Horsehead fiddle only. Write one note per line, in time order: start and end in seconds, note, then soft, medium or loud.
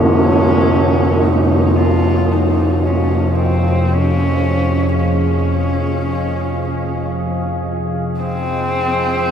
0.00 1.25 C#4 loud
1.23 1.78 D#4 medium
1.76 2.34 F4 medium
2.32 2.87 D#4 medium
2.85 3.38 C#4 medium
3.39 3.95 C4 medium
3.93 4.97 C#4 medium
4.98 7.08 C#4 medium
8.20 9.31 C4 medium